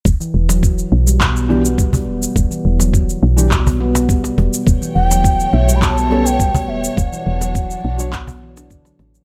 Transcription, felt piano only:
X:1
M:4/4
L:1/16
Q:1/4=104
K:Edor
V:1 name="Felt piano"
z8 z2 [E,DG] z4 z | z6 z [E,DG] z8 | z8 z2 [G,CA] z4 z | z6 z [F,Dc] z8 |]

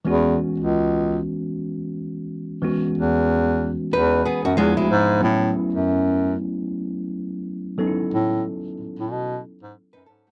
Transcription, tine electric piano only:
X:1
M:4/4
L:1/8
Q:"Swing 16ths" 1/4=93
K:E
V:1 name="Tine electric piano"
[E,G,B,CF]8 | [E,G,B,CF]6 [=F,G,B,=DE]2 | [F,A,B,CE]8 | [F,B,CDEA]8 |]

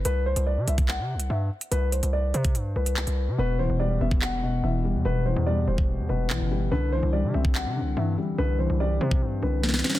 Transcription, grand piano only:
X:1
M:4/4
L:1/8
Q:1/4=144
K:Clyd
V:1 name="Grand piano"
B c d e f2 e z | B z d c2 B3 | B c d e f2 e z | B c d c2 B3 |
B c d e f2 e z | B c d c2 B3 |]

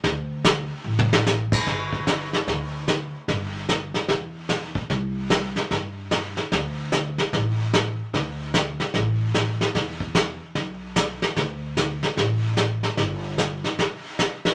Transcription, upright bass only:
X:1
M:4/4
L:1/8
Q:"Swing" 1/4=149
K:Dmix
V:1 name="Upright bass" clef=bass
D,,4 A,,,4 | G,,,4 D,,4 | G,,,4 E,,4 | C,,4 G,,4 |
D,,4 A,,,4 | D,,4 A,,,4 | E,,4 B,,,4 | D,,4 A,,,4 |
G,,,4 z4 |]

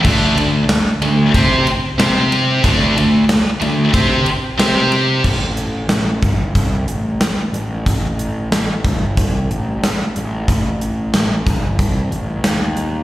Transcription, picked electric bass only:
X:1
M:4/4
L:1/8
Q:1/4=92
K:Glyd
V:1 name="Picked electric bass" clef=bass
D,, D,, z D,, =C, z C,2 | D,, D,, z D,, =C, z C,2 | A,,,2 A,,, G,,, =C,, A,,, z A,,, | A,,,2 A,,, G,,, =C,, A,,, z A,,, |
A,,,2 A,,, G,,, =C,, A,,, ^D,,2 |]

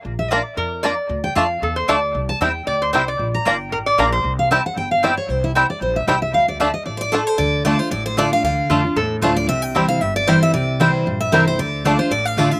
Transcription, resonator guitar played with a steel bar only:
X:1
M:4/4
L:1/16
Q:"Swing" 1/4=229
K:Dm
V:1 name="Resonator guitar played with a steel bar"
z8 B4 d4- | d z6 z A2 c2 d4- | d z6 z d2 c2 c2 d2- | d z6 z B2 d2 B2 c2- |
c z12 z3 | z16 | z16 | z16 |
z4 F4 A3 z4 z | z16 | z16 | z16 |]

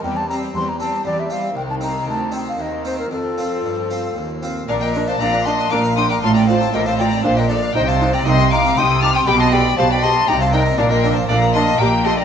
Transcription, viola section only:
X:1
M:3/4
L:1/8
Q:1/4=118
K:Bb
V:1 name="Viola section"
G, G, G, G, G, G, | E,4 E,2 | F,4- F, z | D D D D D D |
F F F F D D | E E E E E E | G G G G E E | D D D D G G |]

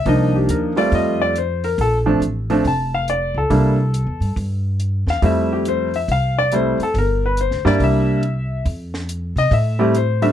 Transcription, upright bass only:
X:1
M:4/4
L:1/8
Q:"Swing" 1/4=140
K:F
V:1 name="Upright bass" clef=bass
C,,2 _E,,2 F,,4 | B,,,2 A,,,2 F,,,3 _D,, | C,,2- (3C,, E,, G,, G,,3 E,, | F,,4 C,,3 z |
G,,,2- (3G,,, D,, G,, C,,4 | F,,3 C, A,,4 |]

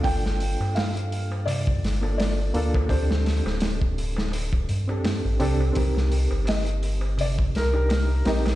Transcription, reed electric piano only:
X:1
M:4/4
L:1/16
Q:"Swing 16ths" 1/4=84
K:Gm
V:1 name="Reed electric piano"
[B,DFA]8- [B,DFA]3 [B,DFA]3 [B,DFA]2 | [CDGA]8- [CDGA]3 [CDGA]3 [CDGA]2 | [CEGB]8- [CEGB]3 [DEGB]3 [CEGB]2 |]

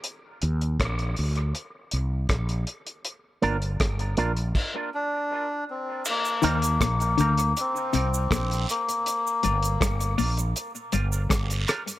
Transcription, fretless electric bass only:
X:1
M:4/4
L:1/8
Q:1/4=80
K:Eb
V:1 name="Fretless electric bass" clef=bass
z E,, B,,, D,, z C,, B,,, z | z G,,, G,,, B,,, z4 | z E,, B,,, D,, z C,, B,,, z | z G,,, G,,, B,,, z G,,, G,,, z |]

